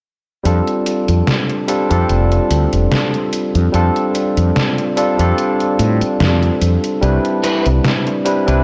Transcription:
0.43 fretless electric bass F2, tine electric piano G3 C4 D4 F4 A4, closed hi-hat
0.67 closed hi-hat
0.86 closed hi-hat
1.08 fretless electric bass F2, closed hi-hat
1.27 snare, closed hi-hat
1.49 closed hi-hat
1.67 tine electric piano G3 C4 D4 F4 A4, closed hi-hat
1.89 fretless electric bass F2, tine electric piano G3 C4 D4 F4 A4, closed hi-hat
2.09 fretless electric bass F1, closed hi-hat
2.32 closed hi-hat
2.51 fretless electric bass D2, closed hi-hat
2.73 fretless electric bass F1, closed hi-hat
2.92 snare, closed hi-hat
3.14 closed hi-hat
3.33 closed hi-hat
3.55 fretless electric bass F2, closed hi-hat
3.72 fretless electric bass F2, tine electric piano G3 C4 D4 F4 A4, closed hi-hat
3.96 closed hi-hat
4.15 closed hi-hat
4.37 fretless electric bass F2, closed hi-hat
4.56 snare, closed hi-hat
4.78 closed hi-hat
4.96 tine electric piano G3 C4 D4 F4 A4, closed hi-hat
5.18 fretless electric bass F2, tine electric piano G3 C4 D4 F4 A4, closed hi-hat
5.38 closed hi-hat
5.60 closed hi-hat
5.79 fretless electric bass A2, closed hi-hat
6.01 muted fretless electric bass stroke, closed hi-hat
6.20 fretless electric bass F2, snare, closed hi-hat
6.43 closed hi-hat
6.61 fretless electric bass F2, closed hi-hat
6.84 closed hi-hat
7.01 fretless electric bass C2, tine electric piano G3 C4 D4 E4 B4, closed hi-hat
7.25 closed hi-hat
7.43 clean electric guitar C4 E4 B4, closed hi-hat
7.66 fretless electric bass C2, closed hi-hat
7.84 muted clean electric guitar stroke, snare, closed hi-hat
8.07 muted clean electric guitar stroke, closed hi-hat
8.25 tine electric piano G3 C4 D4 E4 B4, closed hi-hat
8.46 fretless electric bass C2, tine electric piano G3 C4 D4 E4 B4, closed hi-hat

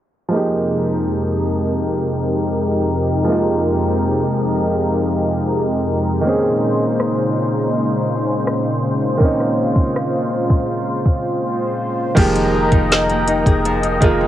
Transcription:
0.28 analog synth pad F2 C3 G#3 D#4 G4 A#4, grand piano F3 G#3 A#3
0.34 grand piano D#4 G4
3.25 grand piano F3 G#3 A#3
3.30 grand piano D#4 F4
6.21 analog synth pad A#2 C#3 D#4 C5, grand piano D#3 A#3 C4
6.27 grand piano C#4 G#4
7.00 cross-stick
8.47 cross-stick
9.18 grand piano D#3 A#3 C4, analog synth pad F4, kick
9.23 grand piano C#4 D#4
9.40 cross-stick
9.76 kick
9.96 cross-stick
10.50 kick
11.06 kick
12.15 808-style bass F1, grand piano D#3 G#3 A#3 G4, nylon-string guitar F3, analog synth pad A#4 D#5 G5 A#5, kick, closed hi-hat, crash
12.36 nylon-string guitar D#4, closed hi-hat
12.54 nylon-string guitar G#4
12.72 808-style bass F1, nylon-string guitar D#4, kick, closed hi-hat
12.91 nylon-string guitar G#4, celesta D#5, snare, closed hi-hat
13.09 nylon-string guitar A#3, closed hi-hat
13.28 nylon-string guitar D#4, closed hi-hat
13.46 808-style bass F1, nylon-string guitar G#4, kick, closed hi-hat
13.65 nylon-string guitar F3, closed hi-hat
13.83 nylon-string guitar D#4, closed hi-hat
14.01 808-style bass F1, grand piano D#3 G#3 A#3 F4, nylon-string guitar G#4, kick, closed hi-hat
14.21 nylon-string guitar D#4

